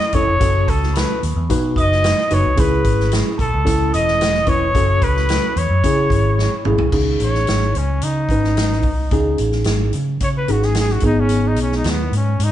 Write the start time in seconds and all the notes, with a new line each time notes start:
Already playing: D#5 D#6
0.00 snare
0.13 E1 C#4 E4 A4 C#5 C#6, kick, closed hi-hat
0.27 F1
0.40 F#1 C#4 F#4 A4, kick, closed hi-hat
0.67 C#2 A4 A5, kick, closed hi-hat
0.83 snare
0.94 B4 B5, snare, closed hi-hat
1.23 D#2, closed hi-hat
1.36 E2
1.50 B2 D#4 F#4 B4, kick, closed hi-hat
1.76 F#1 D#5 D#6, kick, closed hi-hat
1.92 snare
2.04 snare, closed hi-hat
2.18 snare
2.30 F#1 D#4 F#4 B4 C#5 C#6, closed hi-hat
2.45 C2
2.56 C#2 C#4 E4 G#4 B4 B5, kick, closed hi-hat
2.84 G#1, kick, closed hi-hat
3.00 snare
3.12 snare, closed hi-hat
3.38 B1 A4 A5, kick, closed hi-hat
3.54 C#2
3.65 C#2 C#4 E4 A4, kick, closed hi-hat
3.93 E1 D#5 D#6, closed hi-hat
4.08 snare
4.21 snare, closed hi-hat
4.34 snare
4.47 E1 C#4 E4 B4 C#5 C#6, kick, closed hi-hat
4.75 F#1 C#4 F#4 A4, kick, closed hi-hat
5.02 C#2 B4 B5, kick, closed hi-hat
5.16 snare
5.29 snare, closed hi-hat
5.56 E2 C#5 C#6, closed hi-hat
5.70 F#2
5.84 C#3 C#4 E4 G#4, kick, closed hi-hat
6.10 G#1, kick, closed hi-hat
6.39 snare
6.65 G#1 C#4 E4 G#4, mid tom
6.78 C2, floor tom
6.92 C#2 C#4 D#4 G#4, kick, crash
7.20 A1 C#5, closed hi-hat
7.35 snare
7.47 G#1, snare, closed hi-hat
7.75 C#2 C#4, closed hi-hat
8.01 C#3 D#4, closed hi-hat
8.28 G#1 C#4 D#4 B4, kick, closed hi-hat
8.44 snare
8.57 snare, closed hi-hat
8.72 snare
8.82 C2, kick, open hi-hat
9.11 C#2 C#4 D#4 G#4, kick, closed hi-hat
9.38 A1, closed hi-hat
9.52 snare
9.64 G#1, snare, closed hi-hat
9.93 C#3, closed hi-hat
10.20 C#3 C#5, kick, closed hi-hat
10.37 B4
10.48 G#1 C#4 D#4 F#4 G#4, closed hi-hat
10.62 G#4, snare
10.75 snare, closed hi-hat
10.79 G#4
10.88 F#4, snare
11.00 G#1 B3 D#4 G#4, kick, closed hi-hat
11.05 D#4
11.20 C#4
11.29 closed hi-hat
11.48 D#4
11.56 B1, closed hi-hat
11.62 C#4
11.72 snare
11.76 D#4
11.84 D#2, snare, closed hi-hat
11.90 B3
12.12 G#2, closed hi-hat
12.16 C#4
12.39 G#2, closed hi-hat
12.44 D#4